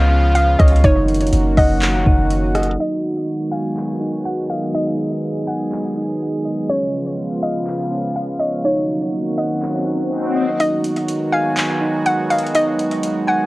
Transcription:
Already playing: C#2 C#3 F3 G#3 B3 F4 F5
0.11 C#4
0.35 F5, closed hi-hat
0.59 C#2 C#5 D#5, kick, cross-stick, closed hi-hat
0.68 closed hi-hat
0.76 closed hi-hat
0.84 F#1 D#3 F#3 A#3 C#4 D#4 F#4 C#5, kick, closed hi-hat
1.08 closed hi-hat
1.15 closed hi-hat
1.21 closed hi-hat
1.27 closed hi-hat
1.33 F#1, closed hi-hat
1.57 F#1 D#5 F#5, kick, open hi-hat
1.82 clap, closed hi-hat
2.06 F#1 D#4, kick
2.30 closed hi-hat
2.55 D#5, cross-stick, closed hi-hat
2.63 closed hi-hat
2.71 closed hi-hat
2.79 D#3 F#3 G#3 B3 D#4 F#4 D#5
3.51 F5 G#5
3.77 clap
4.01 D#4
4.25 F#5
4.50 D#5 F5
4.74 D#4 G#4 D#5
5.47 F#5 G#5
5.72 clap
5.97 D#4
6.45 D#5
6.70 C#3 F3 B3 C#4 F4 C#5
7.43 D#5 F5
7.67 clap
7.91 C#4
8.16 F5
8.39 C#5 D#5
8.64 D#3 F#3 A#3 C#4 D#4 F#4 C#5, swell
9.38 D#5 F#5, open hi-hat
9.62 clap
9.87 D#4
10.35 D#5
10.60 D#3 F#3 G#3 B3 D#4 F#4 D#5, closed hi-hat
10.84 closed hi-hat
10.96 closed hi-hat
11.08 closed hi-hat
11.32 F5 G#5
11.57 clap, closed hi-hat
11.81 D#4
12.06 F#5, closed hi-hat
12.30 D#5 F5, closed hi-hat
12.39 closed hi-hat
12.47 closed hi-hat
12.55 D#4 D#5, closed hi-hat
12.79 closed hi-hat
12.91 closed hi-hat
13.03 closed hi-hat
13.27 F#5 G#5

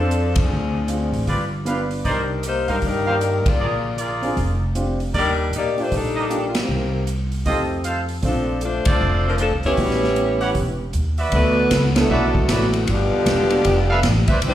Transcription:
Already playing: F2 F3 C4 D4 A4
0.00 F4 A4
0.11 closed hi-hat
0.36 kick, ride
0.40 F3 C4 D4 G#4
0.51 D2
0.88 C4 D4 F4 G#4, closed hi-hat
1.12 A1, open hi-hat
1.27 G1 F4 G4 B4 D5, kick, open hi-hat
1.65 B3 D4 F4 G4 B4 F5, closed hi-hat
1.91 open hi-hat
2.04 C2 G3 D4 D#4 A#4 C5 D5, kick, open hi-hat
2.43 A#3 D#4 G4 C5, closed hi-hat
2.68 G2 G3 D4 D#4 A#4 C5 F5, open hi-hat
2.82 G2 D#4, kick, open hi-hat
2.86 G3 D4 A#4
3.06 D#3 A#3 D#4 G4 A#4 C5 D5 F5
3.21 closed hi-hat
3.46 A#3 F4 G#4 D5, muted upright bass stroke, kick, ride
3.60 A#1 F4 G#4 A#4 D5
3.98 F4 G#4 A#4 D5, closed hi-hat
4.22 C4 D4 F4 G#4, open hi-hat
4.37 F1, kick, open hi-hat
4.75 C4 D4 F4 G4, closed hi-hat
5.00 open hi-hat
5.13 D#2 G3 D4 D#4 G4 A#4 D5, kick, open hi-hat
5.51 A#2, closed hi-hat
5.56 A#3 D#4 G4 D5
5.76 A3 A#3 D4 F4 G4 C5, open hi-hat
5.92 A#1 G3 D4 D#4 A4, kick, open hi-hat
6.16 D#4 G4 A#4 D#5
6.29 A#3 D4 F4 G4, closed hi-hat
6.48 F4
6.55 D#3 A#3 C4 G4, snare, ride
6.69 C2
7.07 closed hi-hat
7.32 open hi-hat
7.46 F2 A3 C4 D#4 F4 G4 A4 C5 D#5, kick, open hi-hat
7.84 F4 A4 C5 F5, closed hi-hat
8.09 open hi-hat
8.22 A#1 F3 A3 C4 D4 F4 A4, kick, open hi-hat
8.61 A3 D4 F4 C5, closed hi-hat
8.85 A3 C4 D4 F4 A4 C5 D5, muted upright bass stroke, kick, ride
9.01 F1
9.27 F3 C4 D4 A#4
9.38 F3 C4 D4 A4, closed hi-hat
9.51 C2
9.63 E2 E3 G3 B3 C#4 E4 G4 C#5, open hi-hat
9.77 A1 G3 B3 C#4 F#4, kick, open hi-hat
9.91 snare
10.04 snare
10.16 closed hi-hat
10.41 G4 B4 C#5 F#5, open hi-hat
10.55 E1, kick, open hi-hat
10.93 D#2, closed hi-hat
11.18 F#4 B4 D5 E5, open hi-hat
11.32 D2 B2 F#3 A3 B3 E4 F#4 B4, kick, ride
11.71 C#2, kick, snare, hi-hat pedal, ride
11.95 B2 F#3 A3 B3 D4 E4 A4, snare, ride
11.99 B3
12.09 B1 F#4 B4 D5 E5
12.35 kick
12.49 A1 A2 B2 F#3 F#4 B4 D5 E5, kick, snare, hi-hat pedal, ride
12.53 E3 A3 B3 F#4
12.73 ride
12.85 G1 F#4, kick, ride
12.90 B2 D3 F3 G3 B3 D4 G4
13.11 muted upright bass stroke
13.26 E1, kick, snare, hi-hat pedal, ride
13.50 ride
13.64 F1, kick, ride
13.89 A4 B4 E5 F5
14.03 A1, kick, snare, hi-hat pedal, ride
14.28 B4 C5 D5 E5, muted upright bass stroke, kick, ride
14.42 C2 E3 G3 C4, kick, ride
14.47 G3 D4 E4 C5

